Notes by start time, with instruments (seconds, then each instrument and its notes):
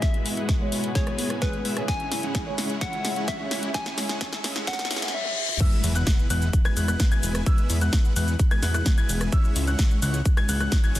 Already playing: string section B2 G#3 G#4, steel-string acoustic guitar E4 G#4, riser
0.02 string section F#4, soft synth lead E5, kick, snare, closed hi-hat
0.14 closed hi-hat
0.25 steel-string acoustic guitar G#3 B3 E4 G#4, open hi-hat
0.37 supersaw synth G#3 B3 E4 B4 F#5, closed hi-hat
0.49 kick, snare, closed hi-hat
0.60 steel-string acoustic guitar G#3 B3 E4 C#5
0.72 supersaw synth G#3 B3 E4 B4 F#5, open hi-hat
0.84 closed hi-hat
0.95 steel-string acoustic guitar G#3 B3 E4 G#4, soft synth lead C#5, kick, snare, closed hi-hat
1.07 supersaw synth G#3 B3 E4 B4 G#5, cross-stick, closed hi-hat
1.18 steel-string acoustic guitar G#3 B3 E4 B4, open hi-hat
1.30 cross-stick, closed hi-hat
1.41 steel-string acoustic guitar G#3 B3 E4 G#4, supersaw synth G#3 B3 E4 B4 C#5, soft synth lead B4, kick, snare, closed hi-hat
1.53 closed hi-hat
1.65 supersaw synth G#3 B3 E4 B4 E5, open hi-hat
1.76 steel-string acoustic guitar C#3 G#3 C#4 E4 G#4, cross-stick, closed hi-hat
1.88 string section C#3 E4, supersaw synth G#3 C#4 E4 C#5 E5, soft synth lead G#5, kick, snare, closed hi-hat
2.00 closed hi-hat
2.11 steel-string acoustic guitar C#3 G#3 C#4 E4 G#4, snare, open hi-hat
2.23 supersaw synth G#3 C#4 E4 C#5 F#5, closed hi-hat
2.35 kick, snare, closed hi-hat
2.46 steel-string acoustic guitar C#3 G#3 C#4 E4 C#5
2.58 supersaw synth G#3 C#4 E4 C#5 F#5, snare, open hi-hat
2.70 closed hi-hat
2.81 supersaw synth G#3 E4 C#5 E5, soft synth lead F#5, kick, snare, closed hi-hat
2.93 closed hi-hat
3.04 steel-string acoustic guitar C#3 G#3 C#4 E4 G#4, snare, open hi-hat
3.16 supersaw synth G#3 C#4 E4 C#5 F#5, closed hi-hat
3.28 soft synth lead E5, kick, snare, closed hi-hat
3.39 steel-string acoustic guitar C#3 G#3 C#4 E4 C#5
3.51 supersaw synth G#3 C#4 E4 C#5 F#5, snare, open hi-hat
3.63 closed hi-hat
3.74 supersaw synth G#3 E4 E5, soft synth lead G#5, kick, snare, closed hi-hat
3.86 snare, closed hi-hat
3.97 steel-string acoustic guitar C#3 G#3 C#4 E4 G#4, snare, open hi-hat
4.09 supersaw synth G#3 C#4 E4 C#5 F#5, snare, closed hi-hat
4.21 supersaw synth G#3 C#4 C#5, kick, snare, closed hi-hat
4.33 snare
4.43 steel-string acoustic guitar C#3 G#3 C#4 E4 G#4, snare, open hi-hat
4.56 supersaw synth G#3 C#4 E4 C#5 F#5, snare, closed hi-hat
4.67 steel-string acoustic guitar C#3 G#3 C#4 E4 G#4, soft synth lead F#5, kick, snare, closed hi-hat, reverse cymbal
4.73 snare
4.79 snare, closed hi-hat
4.85 snare
4.90 steel-string acoustic guitar C#3 G#3 C#4 E4 G#4, supersaw synth G#3 C#4 E4 C#5 E5, snare, open hi-hat
4.96 snare
5.02 snare, closed hi-hat
5.08 snare
5.14 soft synth lead E5, high tom
5.26 high tom
5.49 mid tom
5.60 supersaw synth G#3 B3 E4 B4 E5, grand piano E6, kick, closed hi-hat, crash, impact, cabasa
5.72 cabasa
5.84 analog synth bass E2, open hi-hat, cabasa
5.95 supersaw synth G#3 B3 E4 B4 F#5, grand piano F#6, closed hi-hat, cabasa
6.07 kick, snare, closed hi-hat, cabasa
6.19 cabasa
6.30 analog synth bass E2, supersaw synth G#3 B3 E4 B4 F#5, grand piano F#6, open hi-hat, cabasa
6.42 closed hi-hat, cabasa
6.53 kick, closed hi-hat, cabasa
6.65 supersaw synth G#3 B3 E4 B4 G#5, grand piano G#6, cross-stick, closed hi-hat, cabasa
6.77 analog synth bass E2, supersaw synth G#3 B3 E4 B4 F#5, grand piano F#6, open hi-hat, cabasa
6.88 supersaw synth G#3 B3 E4 B4 F#5, grand piano F#6, cross-stick, closed hi-hat, cabasa
7.00 kick, snare, closed hi-hat, cabasa
7.11 supersaw synth G#3 B3 E4 B4 G#5, grand piano G#6, closed hi-hat, cabasa
7.23 analog synth bass E1, open hi-hat, cabasa
7.35 cross-stick, closed hi-hat, cabasa
7.46 supersaw synth G#3 B3 E4 E5, grand piano E6, kick, closed hi-hat, cabasa
7.58 closed hi-hat, cabasa
7.70 analog synth bass E2, open hi-hat, cabasa
7.81 supersaw synth G#3 B3 E4 B4 F#5, grand piano F#6, closed hi-hat, cabasa
7.93 kick, snare, closed hi-hat, cabasa
8.05 cabasa
8.16 analog synth bass E2, supersaw synth G#3 B3 E4 B4 F#5, grand piano F#6, open hi-hat, cabasa
8.28 closed hi-hat, cabasa
8.39 kick, closed hi-hat, cabasa
8.51 supersaw synth G#3 B3 E4 B4 G#5, grand piano G#6, cross-stick, closed hi-hat, cabasa
8.63 analog synth bass E2, supersaw synth G#3 B3 E4 B4 F#5, grand piano F#6, snare, open hi-hat, cabasa
8.74 supersaw synth G#3 B3 E4 B4 F#5, grand piano F#6, cross-stick, closed hi-hat, cabasa
8.86 kick, snare, closed hi-hat, cabasa
8.98 supersaw synth G#3 B3 E4 B4 G#5, grand piano G#6, closed hi-hat, cabasa
9.09 analog synth bass E1, open hi-hat, cabasa
9.21 cross-stick, closed hi-hat, cabasa
9.32 supersaw synth G#3 C#4 E4 C#5 E5, grand piano E6, kick, closed hi-hat, cabasa
9.44 cabasa
9.56 analog synth bass C#2, open hi-hat, cabasa
9.67 supersaw synth G#3 C#4 E4 C#5 F#5, grand piano F#6, closed hi-hat, cabasa
9.79 kick, snare, closed hi-hat, cabasa
9.91 cabasa
10.02 analog synth bass C#2, supersaw synth G#3 C#4 E4 C#5 F#5, grand piano F#6, open hi-hat, cabasa
10.14 closed hi-hat, cabasa
10.26 kick, closed hi-hat, cabasa
10.37 supersaw synth G#3 C#4 E4 C#5 G#5, grand piano G#6, cross-stick, closed hi-hat, cabasa
10.49 analog synth bass C#2, supersaw synth G#3 C#4 E4 C#5 F#5, grand piano F#6, open hi-hat, cabasa
10.60 supersaw synth G#3 C#4 E4 C#5 F#5, grand piano F#6, cross-stick, closed hi-hat, cabasa
10.72 kick, snare, closed hi-hat, cabasa
10.84 supersaw synth G#3 C#4 E4 C#5 G#5, grand piano G#6, closed hi-hat, cabasa
10.95 analog synth bass G#1, open hi-hat, cabasa